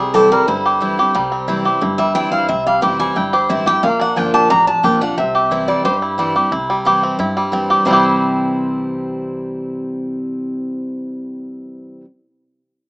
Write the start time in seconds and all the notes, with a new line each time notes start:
Already playing: C2 C3 C4 E4 G4 G#4
0.00 G3
0.14 E3 G3 C4 E4 G4 A4
0.31 G3 C4 E4 A#4
0.48 G1 G2 E4 C5
0.65 G4
0.80 E3 G3 C4 E4
0.98 C4 E4 G4
1.15 C2 C3 G3
1.32 C4
1.48 E3 G3 C4 E4
1.65 C4 E4 G4
1.81 G1 G2 E4
1.98 G3 E5
2.15 E3 G3 C4 E4 G5
2.32 E4 F5
2.48 C2 C3 C4 E5
2.67 G3 F5
2.81 F1 E3 G3 C4 E4 G4 G5
3.00 G3 G#5
3.16 G1 G2 E4 G5
3.33 G4 C5
3.49 A1 E3 G3 C4 E4 E5
3.66 C4 E4 G4 G5
3.83 A#1 A#2 G#3 F5
3.89 A#3
4.00 D4 F#5
4.16 G1 F3 A#3 D4 F4 G5
4.34 G4 A5
4.50 A1 F2 D4 A#5
4.67 D4 A5
4.83 A#1 F3 A#3 D4 F4 G4 G5
5.01 D4 F4 F#5
5.18 C2 C3 C4 E5
5.35 G4
5.51 E3 G3 C4 E4
5.68 G3 D5
5.85 G2 G4 C5
6.02 E4
6.18 E3 G3 C4 E4
6.35 C4 E4 G4
6.52 C2 C3 E4
6.70 G3
6.85 E3 G3 C4 E4 G4
7.03 C4
7.19 G2 E4
7.37 G3
7.52 E3 G3 C4 E4
7.70 G4
7.85 C2 C3 E3 G3 C4 E4 C5
7.91 E4 G4